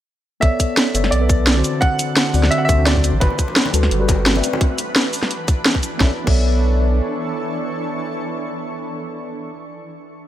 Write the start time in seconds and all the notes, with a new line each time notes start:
0.40 B1 E3 B3 D4 A4 C#5 D5 E5, kick, closed hi-hat
0.60 kick, closed hi-hat, cabasa
0.77 snare, closed hi-hat
0.94 F#1 B3 A4 C#5 D5 E5, closed hi-hat, cabasa
1.04 snare
1.11 B1 D5, closed hi-hat
1.20 B3 A4 B4 D5 E5
1.29 kick, closed hi-hat, cabasa
1.47 snare, closed hi-hat
1.55 D3 C4 F#4 C5
1.64 F#3 D4 C5, closed hi-hat, cabasa
1.81 F#5, kick, closed hi-hat
1.99 closed hi-hat, cabasa
2.17 snare, closed hi-hat
2.33 D2 D3 C4 F#4 D5, open hi-hat, cabasa
2.43 snare
2.51 E5, closed hi-hat
2.58 F#5
2.65 D2 D3 C4 E5, kick
2.69 F#4 E5, closed hi-hat, cabasa
2.78 D2 D3 C4 F#4 E5
2.85 D5, snare, closed hi-hat
2.96 kick
3.03 D3 C4 F#4 D5, closed hi-hat, cabasa
3.13 A1
3.20 G1 A3 F#4 B4, kick, closed hi-hat, muted conga
3.30 high conga
3.39 kick, closed hi-hat, cabasa
3.48 muted conga
3.56 snare, closed hi-hat
3.66 muted conga
3.73 D2 G3 F#4 A4 B4, closed hi-hat, cabasa
3.83 snare
3.91 G1, closed hi-hat, muted conga
4.00 G3 F#4 A4 B4
4.09 kick, closed hi-hat, muted conga, cabasa
4.26 snare, closed hi-hat
4.34 C4 B4 D5 E5, muted conga
4.44 E3 D4, closed hi-hat, cabasa
4.53 muted conga
4.61 kick, closed hi-hat
4.78 closed hi-hat, cabasa
4.96 snare, closed hi-hat
5.13 open hi-hat, cabasa
5.23 snare
5.31 closed hi-hat
5.48 kick, closed hi-hat, cabasa
5.66 snare, closed hi-hat
5.75 kick
5.83 closed hi-hat, cabasa
5.98 B1 E3 B3 D4 A4 C#5 D5 C#6, kick, snare
6.03 E5
6.25 B1 B3 A4 C#5 D5, kick, crash
6.30 E5